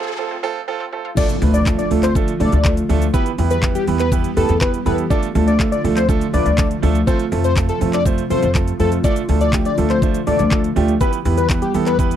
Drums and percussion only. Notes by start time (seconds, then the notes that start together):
1.17 kick, crash, shaker
1.29 closed hi-hat, shaker
1.42 open hi-hat, shaker
1.54 closed hi-hat, shaker
1.66 kick, clap, shaker
1.79 closed hi-hat, shaker
1.91 open hi-hat, shaker
2.03 clap, closed hi-hat, shaker
2.15 kick, shaker
2.28 closed hi-hat, shaker
2.40 open hi-hat, shaker
2.52 closed hi-hat, shaker
2.65 kick, clap, shaker
2.77 closed hi-hat, shaker
2.90 open hi-hat, shaker
3.02 closed hi-hat, shaker
3.14 kick, shaker
3.26 closed hi-hat, shaker
3.38 open hi-hat, shaker
3.51 closed hi-hat, shaker
3.63 kick, clap, shaker
3.75 closed hi-hat, shaker
3.87 open hi-hat, shaker
3.99 clap, closed hi-hat, shaker
4.12 kick, shaker
4.24 closed hi-hat, shaker
4.37 open hi-hat, shaker
4.49 closed hi-hat, shaker
4.61 kick, clap, shaker
4.74 closed hi-hat, shaker
4.86 open hi-hat, shaker
4.98 closed hi-hat, shaker
5.11 kick, shaker
5.23 closed hi-hat, shaker
5.35 open hi-hat, shaker
5.48 closed hi-hat, shaker
5.60 kick, clap, shaker
5.72 closed hi-hat, shaker
5.85 open hi-hat, shaker
5.97 clap, closed hi-hat, shaker
6.09 kick, shaker
6.21 closed hi-hat, shaker
6.34 open hi-hat, shaker
6.46 closed hi-hat, shaker
6.58 kick, clap, shaker
6.71 closed hi-hat, shaker
6.83 open hi-hat, shaker
6.95 closed hi-hat, shaker
7.07 kick, shaker
7.19 closed hi-hat, shaker
7.32 open hi-hat, shaker
7.44 closed hi-hat, shaker
7.56 kick, clap, shaker
7.69 closed hi-hat, shaker
7.81 open hi-hat, shaker
7.93 clap, closed hi-hat, shaker
8.05 kick, shaker
8.18 closed hi-hat, shaker
8.31 open hi-hat, shaker
8.43 closed hi-hat, shaker
8.55 kick, clap, shaker
8.68 closed hi-hat, shaker
8.80 open hi-hat, shaker
8.92 closed hi-hat, shaker
9.04 kick, shaker
9.16 closed hi-hat, shaker
9.29 open hi-hat, shaker
9.41 closed hi-hat, shaker
9.53 kick, clap, shaker
9.65 closed hi-hat, shaker
9.78 open hi-hat, shaker
9.90 clap, closed hi-hat, shaker
10.02 kick, shaker
10.14 closed hi-hat, shaker
10.27 open hi-hat, shaker
10.39 closed hi-hat, shaker
10.51 kick, clap, shaker
10.64 closed hi-hat, shaker
10.76 open hi-hat, shaker
10.88 closed hi-hat, shaker
11.01 kick, shaker
11.13 closed hi-hat, shaker
11.25 open hi-hat, shaker
11.38 closed hi-hat, shaker
11.50 kick, clap, shaker
11.62 closed hi-hat, shaker
11.74 open hi-hat, shaker
11.86 clap, closed hi-hat, shaker
11.99 kick, shaker
12.11 closed hi-hat, shaker